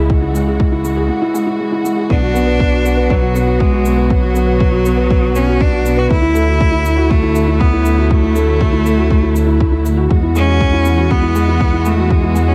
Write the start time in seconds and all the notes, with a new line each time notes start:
Already playing: C#2 C#3 E3 G#3 E4 G#4
0.09 G#3 F#4, kick
0.22 E4
0.34 G#3, shaker
0.47 G#4
0.60 G#3, kick
0.72 E4
0.84 G#3, shaker
0.97 G#4
1.09 G#3
1.22 E4
1.34 G#3, shaker
1.47 E4
1.59 G#3
1.72 E4
1.85 G#3, shaker
1.97 G#4
2.09 B1 D3 F#3 B3 D4, kick
2.22 F#4
2.34 B3, shaker
2.47 B4
2.59 B3, kick
2.72 F#4
2.85 B3, shaker
2.97 B4
3.10 F#3 B3, kick
3.22 F#4
3.35 B3, shaker
3.47 F#4
3.59 G#3 B3, kick
3.73 F#4
3.85 B3, shaker
3.97 B4
4.10 F#3 B3, kick
4.23 F#4
4.34 B3, shaker
4.47 B4
4.59 B3, kick
4.72 F#4
4.85 B3, shaker
4.97 B4
5.09 B3, kick
5.22 F#4
5.35 B3 C#4, shaker
5.47 F#4
5.60 B3 D4, kick
5.72 F#4
5.85 B3, shaker
5.97 F#4 B4
6.09 F#3 A3 E4, kick
6.22 E4
6.34 A3, shaker
6.59 A3, kick
6.72 E4
6.85 A3, shaker
6.97 F#4
7.10 A3, kick
7.23 E4
7.35 A3, shaker
7.48 E4
7.60 A3 B3, kick
7.73 E4
7.86 A3, shaker
7.98 F#4
8.10 A3, kick
8.23 E4
8.35 A3, shaker
8.48 F#4
8.60 A3, kick
8.72 E4
8.86 A3, shaker
8.97 F#4
9.10 A3, kick
9.22 E4
9.34 A3, shaker
9.47 E4
9.59 A3, kick
9.72 E4
9.85 A3, shaker
9.97 F#4
10.10 E2 E3 G#3 B3 F#4, kick
10.23 E4
10.36 G#3 C#4, shaker
10.47 F#4
10.60 G#3, kick
10.73 E4
10.85 G#3, shaker
10.97 F#4
11.09 G#3 B3, kick
11.22 E4
11.35 G#3, shaker
11.48 E4
11.60 G#3, kick
11.73 E4
11.85 G#3 A3, shaker
11.98 F#4
12.11 G#3, kick
12.23 E4
12.35 G#3, shaker
12.48 C#4 F#4